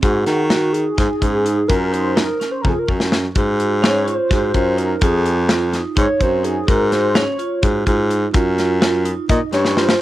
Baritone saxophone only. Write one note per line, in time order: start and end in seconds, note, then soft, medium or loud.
0.03 0.23 G#2 medium
0.26 0.86 D#3 medium
0.98 1.08 G#2 medium
1.22 1.61 G#2 medium
1.69 2.26 F#2 loud
2.65 2.74 F2 medium
2.89 3.28 F#2 medium
3.35 4.15 G#2 medium
4.31 4.50 G#2 medium
4.54 4.94 F#2 medium
5.01 5.81 F2 medium
5.97 6.07 G#2 medium
6.20 6.60 F#2 medium
6.68 7.25 G#2 medium
7.63 7.83 G#2 medium
7.87 8.26 G#2 medium
8.34 9.14 F#2 loud
9.30 9.39 A#2 medium
9.53 9.92 G2 medium